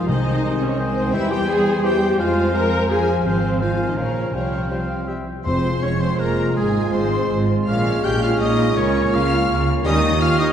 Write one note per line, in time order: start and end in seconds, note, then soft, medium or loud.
0.00 1.13 G#3 medium
0.00 1.09 D#4 medium
0.07 1.11 C2 medium
0.07 0.57 C3 medium
0.07 0.77 D#3 medium
0.07 0.43 D#3 medium
0.07 0.60 D#4 loud
0.07 0.24 C5 medium
0.07 0.77 C5 medium
0.07 0.77 D#5 medium
0.07 0.60 D#5 medium
0.07 0.77 G#5 medium
0.26 0.43 D#5 medium
0.43 0.77 C3 medium
0.43 0.61 C5 medium
0.61 0.78 C#4 medium
0.61 0.78 C#5 medium
0.61 0.78 D#5 medium
0.78 1.15 D#3 medium
0.78 1.13 G#3 medium
0.78 1.13 C4 medium
0.78 0.94 C5 medium
0.78 1.12 C5 medium
0.78 1.13 C5 medium
0.78 1.13 D#5 medium
0.78 1.15 G#5 medium
0.96 1.13 D#5 medium
1.12 2.19 E2 medium
1.12 1.83 E3 medium
1.12 1.25 G3 medium
1.12 2.19 G3 medium
1.12 1.25 C4 medium
1.12 1.30 E4 loud
1.12 1.82 C5 medium
1.12 1.83 C5 medium
1.12 1.31 E5 medium
1.12 1.30 E5 medium
1.12 1.84 G5 medium
1.31 1.48 G4 loud
1.31 1.49 C5 medium
1.31 1.48 G5 medium
1.48 1.83 G#4 loud
1.48 1.66 E5 medium
1.48 1.84 G#5 medium
1.65 1.83 C5 medium
1.83 2.21 E3 medium
1.83 2.19 G4 loud
1.83 2.21 C5 medium
1.83 2.19 C5 medium
1.83 2.00 E5 medium
1.83 2.21 G5 medium
1.83 2.19 G5 medium
2.02 2.19 C5 medium
2.19 3.23 F2 medium
2.19 2.89 F3 medium
2.19 2.31 G#3 medium
2.19 2.90 G#3 medium
2.19 2.32 C4 medium
2.19 2.55 F4 loud
2.19 2.36 G#4 medium
2.19 2.89 C5 medium
2.19 2.54 F5 medium
2.19 2.90 F5 medium
2.19 2.89 G#5 medium
2.37 2.54 C5 medium
2.55 2.72 G#4 medium
2.55 2.89 A#4 loud
2.55 2.90 A#5 medium
2.73 2.90 C5 medium
2.90 3.59 F3 medium
2.90 3.24 F3 medium
2.90 3.25 G#4 medium
2.90 3.07 G#4 medium
2.90 3.25 C5 medium
2.90 3.25 F5 medium
2.90 3.25 G#5 medium
3.08 3.25 C5 medium
3.24 3.93 G#1 medium
3.24 3.58 F3 medium
3.24 3.60 F3 medium
3.24 3.58 C4 medium
3.24 3.60 C4 medium
3.24 3.60 C5 medium
3.24 3.60 F5 medium
3.24 3.59 F5 medium
3.24 3.60 G#5 medium
3.60 3.97 D#3 medium
3.60 3.95 F3 medium
3.60 3.96 F3 medium
3.60 3.96 C4 medium
3.60 3.88 F4 medium
3.60 3.98 C5 medium
3.60 3.96 F5 medium
3.60 3.88 F5 medium
3.60 3.97 F5 medium
3.60 3.98 G#5 medium
3.89 3.97 D#4 medium
3.89 3.97 D#5 medium
3.96 4.34 A#1 medium
3.96 4.34 C#3 medium
3.96 4.33 F3 medium
3.96 4.36 F3 medium
3.96 4.33 C#4 medium
3.96 4.32 F4 medium
3.96 4.35 A#4 medium
3.96 4.33 C#5 medium
3.96 4.33 F5 medium
3.96 4.35 A#5 medium
4.32 5.24 C2 medium
4.32 5.26 F3 medium
4.32 4.69 G3 soft
4.32 4.70 G3 soft
4.32 4.70 C#4 medium
4.32 4.69 F4 soft
4.32 4.70 C5 soft
4.32 4.70 C#5 medium
4.32 4.70 F5 medium
4.32 4.70 G5 soft
4.70 5.07 G3 soft
4.70 5.07 G3 medium
4.70 5.08 C4 medium
4.70 5.07 F4 soft
4.70 5.07 C5 soft
4.70 5.08 C5 soft
4.70 5.09 F5 medium
4.70 5.07 F5 medium
4.70 5.07 G5 soft
5.08 5.16 G3 soft
5.08 5.26 G3 soft
5.08 5.26 E4 soft
5.08 5.26 C5 soft
5.08 5.26 E5 soft
5.08 5.16 E5 soft
5.08 5.26 G5 soft
5.44 5.78 F1 medium
5.44 5.78 F2 medium
5.44 5.97 F2 medium
5.44 7.63 G#3 medium
5.44 5.79 C4 medium
5.44 7.63 F4 medium
5.44 5.80 C5 medium
5.44 7.63 C5 medium
5.44 5.84 C5 medium
5.44 5.80 C6 medium
5.82 6.15 F1 medium
5.82 6.15 F2 medium
5.82 5.89 C#4 medium
5.82 6.01 C#5 medium
5.82 6.02 C#5 medium
5.82 6.01 C#6 medium
6.00 6.19 C4 medium
6.00 6.19 C5 medium
6.00 6.21 C5 medium
6.00 6.19 C6 medium
6.19 6.52 F1 medium
6.19 6.52 F2 medium
6.19 6.56 A#3 medium
6.19 6.55 A#4 medium
6.19 6.56 A#4 medium
6.19 6.58 A#4 medium
6.19 6.56 A#5 medium
6.56 6.89 G#1 medium
6.56 6.89 G#2 medium
6.56 6.93 G#3 medium
6.56 6.92 G#4 medium
6.56 6.93 G#4 medium
6.56 6.92 G#5 loud
6.93 7.25 G#1 medium
6.93 7.26 G#2 medium
6.93 7.49 C4 medium
6.93 7.47 C5 medium
6.93 7.39 C5 medium
6.93 7.48 C5 medium
6.93 7.49 C6 medium
7.30 7.63 G#1 medium
7.30 7.63 G#2 medium
7.66 8.00 A#1 medium
7.66 8.00 A#2 medium
7.66 8.75 G#3 medium
7.66 8.78 G#3 medium
7.66 9.82 C#4 medium
7.66 8.02 F4 medium
7.66 9.84 C#5 medium
7.66 8.01 F5 medium
7.66 8.02 F5 medium
7.66 8.06 F5 medium
7.66 8.01 F6 loud
8.04 8.37 A#1 medium
8.04 8.37 A#2 medium
8.04 8.22 G4 loud
8.04 8.22 G5 medium
8.04 8.10 G5 loud
8.04 8.22 G5 loud
8.04 8.23 G6 loud
8.22 8.30 F4 medium
8.22 8.30 F5 medium
8.22 8.40 F5 medium
8.22 8.41 F6 loud
8.40 8.73 A#1 medium
8.40 8.73 A#2 medium
8.40 8.76 D#4 medium
8.40 8.76 D#5 loud
8.40 8.76 D#5 medium
8.40 8.79 D#5 medium
8.40 8.76 D#6 loud
8.77 9.09 C#2 medium
8.77 9.09 C#3 medium
8.77 10.53 A#3 medium
8.77 9.85 A#3 medium
8.77 9.13 C#4 loud
8.77 9.15 C#5 medium
8.77 9.16 C#5 loud
8.77 9.14 C#5 loud
8.77 9.13 C#6 loud
9.13 9.45 C#2 medium
9.13 9.45 C#3 medium
9.13 9.67 F4 loud
9.13 9.68 F5 loud
9.13 9.68 F5 medium
9.13 9.68 F5 loud
9.13 9.67 F6 loud
9.49 9.81 C#2 loud
9.49 9.81 C#3 medium
9.84 10.15 D#2 medium
9.84 10.16 D#3 loud
9.84 9.98 G3 medium
9.84 9.98 C#4 medium
9.84 10.19 D#4 loud
9.84 10.53 G4 medium
9.84 10.53 C#5 medium
9.84 10.18 D#5 medium
9.84 10.19 D#5 loud
9.84 10.19 D#6 loud
10.21 10.39 F4 loud
10.21 10.40 F5 loud
10.21 10.39 F5 loud
10.21 10.40 F5 loud
10.21 10.40 F6 loud
10.38 10.53 D#4 loud
10.38 10.53 D#5 loud
10.38 10.47 D#6 loud